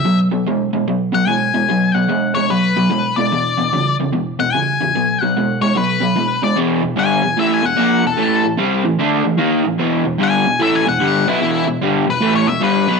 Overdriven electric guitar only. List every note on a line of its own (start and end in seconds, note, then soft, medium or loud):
0.05 0.28 B2 medium
0.05 0.28 F#3 medium
0.32 0.44 B2 medium
0.32 0.44 F#3 medium
0.47 0.70 B2 medium
0.47 0.70 G#3 medium
0.73 0.85 B2 medium
0.73 0.85 G#3 medium
0.88 1.11 B2 medium
0.88 1.11 F#3 medium
1.13 1.25 B2 medium
1.13 1.26 F#3 medium
1.27 1.51 B2 medium
1.27 1.51 G#3 medium
1.54 1.67 B2 medium
1.54 1.67 G#3 medium
1.69 1.92 B2 medium
1.69 1.93 F#3 loud
1.95 2.07 B2 medium
1.95 2.08 F#3 medium
2.08 2.32 B2 medium
2.08 2.33 G#3 loud
2.36 2.48 B2 medium
2.36 2.48 G#3 medium
2.50 2.73 B2 medium
2.50 2.74 F#3 medium
2.76 2.89 B2 medium
2.76 2.89 F#3 medium
2.90 3.14 B2 medium
2.90 3.14 G#3 medium
3.17 3.30 B2 medium
3.17 3.30 G#3 medium
3.32 3.55 E2 medium
3.32 3.55 B2 medium
3.58 3.70 E2 medium
3.58 3.71 B2 medium
3.73 3.96 E2 medium
3.73 3.97 C#3 medium
4.00 4.11 E2 medium
4.00 4.12 C#3 medium
4.12 4.36 E2 medium
4.12 4.36 B2 medium
4.39 4.52 E2 medium
4.39 4.52 B2 medium
4.55 4.78 E2 medium
4.55 4.78 C#3 medium
4.81 4.93 E2 medium
4.81 4.93 C#3 medium
4.95 5.18 B2 medium
4.95 5.18 F#3 medium
5.22 5.34 B2 medium
5.22 5.34 F#3 medium
5.36 5.59 B2 medium
5.36 5.59 G#3 loud
5.62 5.75 B2 medium
5.62 5.75 G#3 medium
5.76 5.99 B2 medium
5.76 5.99 F#3 medium
6.01 6.14 B2 medium
6.01 6.15 F#3 medium
6.16 6.40 B2 medium
6.16 6.40 G#3 medium
6.43 6.55 B2 medium
6.43 6.55 G#3 medium
6.56 6.82 E2 medium
6.56 6.82 B2 medium
6.56 6.82 E3 medium
6.83 6.94 E2 medium
6.83 6.94 B2 medium
6.96 7.22 G2 medium
6.96 7.22 D3 loud
6.96 7.22 G3 medium
7.23 7.35 E2 medium
7.23 7.34 B2 medium
7.37 7.63 A2 medium
7.37 7.63 E3 medium
7.37 7.63 A3 medium
7.63 7.74 E2 medium
7.63 7.75 B2 medium
7.76 8.02 A#2 medium
7.76 8.03 F3 medium
7.76 8.03 A#3 loud
8.04 8.15 E2 medium
8.04 8.15 B2 medium
8.17 8.43 A2 medium
8.17 8.43 E3 medium
8.17 8.44 A3 medium
8.44 8.56 A2 medium
8.44 8.56 E3 medium
8.58 8.83 C3 medium
8.58 8.84 G3 medium
8.58 8.84 C4 loud
8.85 8.96 A2 medium
8.85 8.96 E3 medium
8.99 9.24 D3 medium
8.99 9.24 A3 medium
8.99 9.25 D4 loud
9.24 9.36 A2 medium
9.24 9.36 E3 medium
9.37 9.63 D#3 medium
9.37 9.64 A#3 medium
9.37 9.64 D#4 medium
9.64 9.76 A2 medium
9.64 9.76 E3 medium
9.78 10.04 E2 loud
9.78 10.04 B2 medium
9.78 10.05 E3 medium
10.05 10.17 E2 medium
10.05 10.17 B2 medium
10.18 10.44 G2 medium
10.18 10.45 D3 medium
10.18 10.45 G3 medium
10.46 10.57 E2 medium
10.46 10.57 B2 medium
10.59 10.85 A2 medium
10.59 10.85 E3 medium
10.59 10.86 A3 loud
10.86 10.97 E2 medium
10.86 10.98 B2 medium
11.00 11.25 G2 medium
11.00 11.26 D3 medium
11.00 11.26 G3 medium
11.27 11.40 B2 medium
11.27 11.41 F#3 medium
11.27 11.41 B3 loud
11.40 11.66 E2 medium
11.40 11.66 B2 medium
11.40 11.66 E3 medium
11.67 11.78 E2 medium
11.67 11.78 B2 medium
11.81 12.06 G2 loud
11.81 12.06 D3 loud
11.81 12.07 G3 medium
12.07 12.18 E2 medium
12.07 12.18 B2 medium
12.21 12.46 A2 medium
12.21 12.47 E3 medium
12.21 12.47 A3 loud
12.47 12.58 E2 medium
12.47 12.59 B2 medium
12.61 12.86 G2 medium
12.61 12.87 D3 medium
12.61 12.87 G3 medium
12.88 13.00 B2 medium
12.88 13.00 F#3 medium
12.88 13.00 B3 medium